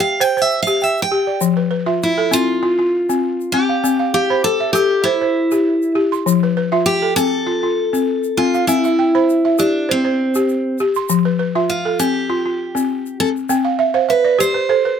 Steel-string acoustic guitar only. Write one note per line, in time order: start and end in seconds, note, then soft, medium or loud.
0.00 0.21 F5 medium
0.21 0.42 G5 loud
0.42 0.62 E5 medium
0.62 0.83 F5 medium
0.83 1.02 E5 medium
1.02 1.39 G5 medium
2.03 2.34 E4 medium
2.33 3.58 F4 medium
3.52 4.13 G4 medium
4.14 4.44 G4 medium
4.44 4.72 A4 medium
4.73 5.05 G4 medium
5.04 5.91 E4 medium
6.86 7.14 G4 medium
7.16 8.41 A4 loud
8.37 8.66 F4 medium
8.67 9.59 E4 medium
9.59 9.90 D4 medium
9.91 10.77 C4 medium
11.70 11.98 F4 medium
11.99 13.20 G4 medium
13.20 13.28 A4 medium
14.10 14.40 B4 medium
14.40 15.00 C5 medium